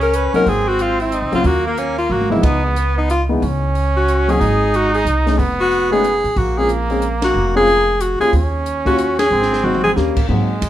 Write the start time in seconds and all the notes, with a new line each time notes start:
Already playing: C#2 C#4
0.01 A#4, open hi-hat
0.13 B4, closed hi-hat
0.33 F#3 A#3 C4 D#4 A#4, muted upright bass stroke, open hi-hat
0.46 G#1 C4 G#4, kick, open hi-hat
0.68 F#4
0.79 F4, closed hi-hat
1.00 E4, open hi-hat
1.12 D#4, closed hi-hat
1.22 C2
1.32 C#2 F#3 A#3 C#4 F4, open hi-hat
1.44 D#2 A#3 F#4, kick, open hi-hat
1.67 A#3
1.77 C#4, closed hi-hat
1.98 F4, open hi-hat
2.09 G#1 A#3 F#4, mid tom
2.21 high tom
2.30 F3 G#3 B3 D#4 E4, mid tom
2.42 C#2 B3 D#4, kick, ride
2.66 G#3
2.76 B3, closed hi-hat
2.98 D#4
3.10 F4, closed hi-hat
3.29 E3 G#3 B3 D#4
3.42 C#2 C#4, kick, open hi-hat
3.75 open hi-hat
3.97 F#4
4.08 closed hi-hat
4.28 F#3 A#3 C4 D#4 G#4, open hi-hat
4.40 G#1 D#4, kick, open hi-hat
4.74 F#4, closed hi-hat
4.94 G#4, open hi-hat
5.05 C2, closed hi-hat
5.26 G#3 A3 C#4 D#4, snare, open hi-hat
5.38 F1 B3, kick, open hi-hat
5.60 F#4
5.71 open hi-hat
5.91 G#3 A3 C#4 D#4 G#4
6.04 closed hi-hat
6.24 B1, open hi-hat
6.36 A#1 A#3 F#4, kick, open hi-hat
6.58 G#3 C4 C#4 F4 G#4
6.69 closed hi-hat
6.90 G#3 C4 C#4 G#4, open hi-hat
7.02 closed hi-hat
7.22 F#4, snare, ride
7.34 F1
7.55 G#3 C4 C#4 F4 G#4
7.67 open hi-hat
8.01 F#4, closed hi-hat
8.20 G3 A#3 C#4 F4 G#4, muted upright bass stroke, open hi-hat
8.33 D#2 C#4, kick, open hi-hat
8.66 closed hi-hat
8.85 G3 A#3 C#4 F4 F#4, kick, open hi-hat
8.98 closed hi-hat
9.19 G#4, snare, ride
9.31 G#1 C4
9.42 snare
9.53 snare
9.63 F#3 A#3 C4 D#4 F#4, mid tom
9.75 mid tom
9.84 G#4, mid tom
9.96 D#2 G3 A#3 C#4 G4, snare
10.16 kick, crash
10.29 G#2 F#3 G#3 A#3 C4 D#4, kick
10.62 F2, kick, hi-hat pedal, ride